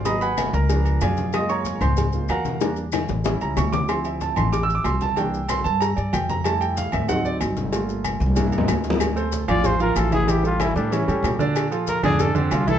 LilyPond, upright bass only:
\new Staff \with { instrumentName = "Upright bass" } { \clef bass \time 4/4 \key c \mixolydian \tempo 4 = 188 aes,,4. des,4. ges,4~ | ges,4. des,4. e,4~ | e,4. a,,4 cis,8 d,4~ | d,4. a,,4. c,4~ |
c,4. g,4 g,8 f,4~ | f,4. d,4. g,,4~ | g,,4. c,4. d,4~ | \key d \minor d,4. a,,4. a,,4~ |
a,,4. a,4 a,8 bes,4~ | bes,4. f,4. c,4 | }